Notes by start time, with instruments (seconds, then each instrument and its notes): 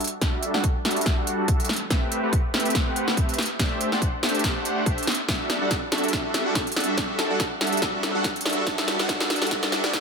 Already playing: 808-style bass E1
0.00 closed hi-hat
0.04 closed hi-hat
0.07 closed hi-hat
0.21 808-style bass E1, supersaw synth G3 D4 F#4 A4 E5, kick, snare, closed hi-hat
0.43 closed hi-hat
0.54 supersaw synth G3 D4 F#4 A4 F#5, snare
0.64 kick, closed hi-hat
0.85 supersaw synth G3 D4 F#4 A4 E5, snare, closed hi-hat
0.91 closed hi-hat
0.96 closed hi-hat
1.01 closed hi-hat
1.06 kick, snare, closed hi-hat
1.18 supersaw synth G3 D4 F#4 A4 F#5
1.27 closed hi-hat
1.48 supersaw synth G3 D4 F#4 A4 E5, kick, closed hi-hat
1.60 closed hi-hat
1.65 closed hi-hat
1.69 808-style bass A1, snare, closed hi-hat
1.73 closed hi-hat
1.76 closed hi-hat
1.90 supersaw synth A3 C4 G4 B4 E5, kick, snare, closed hi-hat
2.12 closed hi-hat
2.23 supersaw synth A3 C4 G4 B4 F#5
2.33 kick, closed hi-hat
2.54 supersaw synth A3 C4 G4 B4 E5, snare, closed hi-hat
2.60 closed hi-hat
2.65 closed hi-hat
2.70 closed hi-hat
2.75 kick, snare, closed hi-hat
2.87 supersaw synth A3 C4 G4 B4 F#5
2.96 closed hi-hat
3.08 snare
3.17 supersaw synth A3 C4 G4 B4 E5, kick, closed hi-hat
3.29 closed hi-hat
3.34 closed hi-hat
3.38 snare, closed hi-hat
3.42 closed hi-hat
3.45 closed hi-hat
3.59 supersaw synth A3 D4 G4 C5 E5, kick, snare, closed hi-hat
3.81 closed hi-hat
3.92 supersaw synth A3 D4 G4 C5 F#5, snare
4.02 kick, closed hi-hat
4.23 supersaw synth A3 D4 G4 C5 E5, snare, closed hi-hat
4.29 closed hi-hat
4.35 closed hi-hat
4.39 closed hi-hat
4.44 kick, snare, closed hi-hat
4.56 supersaw synth A3 D4 G4 C5 F#5
4.65 closed hi-hat
4.86 supersaw synth A3 D4 G4 C5 E5, kick, closed hi-hat
4.98 closed hi-hat
5.03 closed hi-hat
5.07 snare, closed hi-hat
5.11 closed hi-hat
5.14 closed hi-hat
5.28 supersaw synth G3 D4 F#4 A4 E5, kick, snare, closed hi-hat
5.50 snare, closed hi-hat
5.61 supersaw synth G3 D4 F#4 A4 F#5
5.71 kick, snare, closed hi-hat
5.92 supersaw synth G3 D4 F#4 A4 E5, snare, closed hi-hat
5.98 closed hi-hat
6.04 closed hi-hat
6.08 closed hi-hat
6.13 supersaw synth G3 D4 F#4 A4 E5, kick, snare, closed hi-hat
6.34 snare, closed hi-hat
6.46 supersaw synth G3 D4 F#4 A4 F#5
6.55 kick, snare, closed hi-hat
6.67 closed hi-hat
6.72 closed hi-hat
6.76 supersaw synth G3 D4 F#4 A4 E5, snare, closed hi-hat
6.80 closed hi-hat
6.84 closed hi-hat
6.97 supersaw synth G3 D4 F#4 A4 E5, kick, snare, closed hi-hat
7.19 snare, closed hi-hat
7.30 supersaw synth G3 D4 F#4 A4 F#5
7.40 kick, snare, closed hi-hat
7.61 supersaw synth G3 D4 F#4 A4 E5, snare, closed hi-hat
7.67 closed hi-hat
7.72 closed hi-hat
7.77 closed hi-hat
7.82 supersaw synth G3 D4 F#4 A4 E5, kick, snare
8.03 snare, closed hi-hat
8.15 supersaw synth G3 D4 F#4 A4 F#5
8.24 kick, snare, closed hi-hat
8.36 closed hi-hat
8.41 closed hi-hat
8.45 808-style bass A1, supersaw synth G3 D4 F#4 A4 E5, snare, closed hi-hat
8.49 closed hi-hat
8.53 closed hi-hat
8.66 supersaw synth G3 D4 F#4 A4 E5, kick, snare, closed hi-hat
8.78 snare
8.88 snare, closed hi-hat
8.99 supersaw synth G3 D4 F#4 A4 F#5, snare
9.09 supersaw synth G3 D4 F#4 A4 E5, kick, snare, closed hi-hat
9.21 snare
9.30 snare, closed hi-hat
9.36 closed hi-hat
9.42 supersaw synth G3 D4 F#4 A4 F#5, snare, closed hi-hat
9.46 closed hi-hat
9.51 supersaw synth G3 D4 F#4 A4 E5, kick, snare, closed hi-hat
9.63 snare
9.72 snare, closed hi-hat
9.84 supersaw synth G3 D4 F#4 A4 F#5, snare
9.93 supersaw synth G3 D4 F#4 A4 E5, kick, snare, closed hi-hat